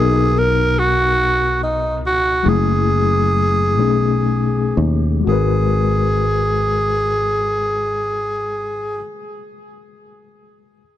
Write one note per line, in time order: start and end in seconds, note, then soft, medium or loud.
0.00 2.02 B1 medium
0.00 2.39 B2 medium
0.00 0.50 A#3 medium
0.00 2.40 B3 soft
0.00 0.50 D#4 medium
0.00 2.40 D#4 medium
0.00 0.40 G#4 medium
0.00 2.41 A#4 medium
0.39 0.80 A#4 medium
0.79 1.60 F#4 medium
1.63 2.00 D#4 medium
2.02 2.47 C#2 medium
2.06 2.50 F#4 medium
2.43 3.80 F#1 medium
2.43 3.79 F#3 medium
2.43 3.77 A3 medium
2.43 3.79 E4 medium
2.43 3.80 G#4 medium
2.49 4.78 G#4 medium
3.78 4.72 B1 medium
3.78 5.25 B2 medium
3.78 5.25 A3 medium
3.78 5.26 C#4 medium
3.78 5.26 D#4 medium
3.78 5.26 G#4 medium
4.77 5.23 D#2 medium
5.21 8.95 G#3 medium
5.21 8.99 F#4 medium
5.27 9.01 G#1 medium
5.27 9.03 G#4 medium
5.27 9.02 A#4 medium
5.32 9.06 B4 medium